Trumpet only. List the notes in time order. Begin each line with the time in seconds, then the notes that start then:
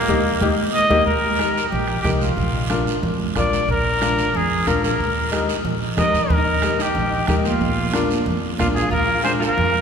Already playing: A#3
0.74 D#5
1.06 A#4
1.69 G4
2.02 G4
2.20 F4
3.38 D5
3.71 A#4
4.36 G#4
4.68 A#4
4.84 A#4
5.98 D#5
6.32 A#4
6.81 G4
7.28 G4
7.45 F4
8.60 F4
8.75 G#4
8.91 A#4
9.24 C5
9.39 A#4